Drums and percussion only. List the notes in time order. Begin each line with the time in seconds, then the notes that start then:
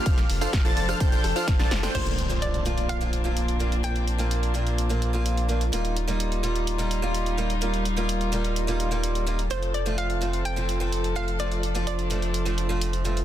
0.06 kick, closed hi-hat, ride, tambourine
0.18 snare, closed hi-hat, tambourine
0.30 open hi-hat
0.41 closed hi-hat, tambourine
0.53 kick, cross-stick, snare, closed hi-hat, ride, tambourine
0.65 closed hi-hat, tambourine
0.77 open hi-hat
0.89 cross-stick, closed hi-hat, tambourine
1.00 kick, closed hi-hat, ride, tambourine
1.12 closed hi-hat, tambourine
1.24 cross-stick, open hi-hat
1.36 closed hi-hat, tambourine
1.48 kick, snare, closed hi-hat, ride, tambourine
1.60 snare, closed hi-hat, tambourine
1.71 snare, open hi-hat
1.83 snare, closed hi-hat, tambourine
1.95 closed hi-hat, crash
2.07 closed hi-hat
2.19 closed hi-hat
2.30 closed hi-hat
2.42 closed hi-hat
2.54 closed hi-hat
2.66 closed hi-hat
2.78 closed hi-hat
2.89 closed hi-hat
3.01 closed hi-hat
3.13 closed hi-hat
3.37 closed hi-hat
3.48 closed hi-hat
3.60 closed hi-hat
3.72 closed hi-hat
3.84 closed hi-hat
3.96 closed hi-hat
4.08 closed hi-hat
4.19 closed hi-hat
4.31 closed hi-hat
4.43 closed hi-hat
4.55 closed hi-hat
4.67 closed hi-hat
4.78 closed hi-hat
4.90 closed hi-hat
5.02 closed hi-hat
5.26 closed hi-hat
5.37 closed hi-hat
5.49 closed hi-hat
5.61 closed hi-hat
5.73 closed hi-hat
5.85 closed hi-hat
5.96 closed hi-hat
6.08 closed hi-hat
6.20 closed hi-hat
6.32 closed hi-hat
6.44 closed hi-hat
6.55 closed hi-hat
6.67 closed hi-hat
6.79 closed hi-hat
6.91 closed hi-hat
7.14 closed hi-hat
7.26 closed hi-hat
7.38 closed hi-hat
7.50 closed hi-hat
7.62 closed hi-hat
7.74 closed hi-hat
7.85 closed hi-hat
7.97 closed hi-hat
8.09 closed hi-hat
8.21 closed hi-hat
8.33 closed hi-hat
8.44 closed hi-hat
8.56 closed hi-hat
8.68 closed hi-hat
8.80 closed hi-hat
8.92 closed hi-hat
9.04 closed hi-hat
9.15 closed hi-hat
9.27 closed hi-hat
9.39 closed hi-hat
9.51 closed hi-hat
9.63 closed hi-hat
9.74 closed hi-hat
9.86 closed hi-hat
9.98 closed hi-hat
10.10 closed hi-hat
10.22 closed hi-hat
10.33 closed hi-hat
10.45 closed hi-hat
10.57 closed hi-hat
10.69 closed hi-hat
10.92 closed hi-hat
11.04 closed hi-hat
11.16 closed hi-hat
11.28 closed hi-hat
11.40 closed hi-hat
11.52 closed hi-hat
11.63 closed hi-hat
11.75 closed hi-hat
11.87 closed hi-hat
11.99 closed hi-hat
12.11 closed hi-hat
12.22 closed hi-hat
12.34 closed hi-hat
12.46 closed hi-hat
12.58 closed hi-hat
12.81 closed hi-hat
12.93 closed hi-hat
13.05 closed hi-hat
13.17 closed hi-hat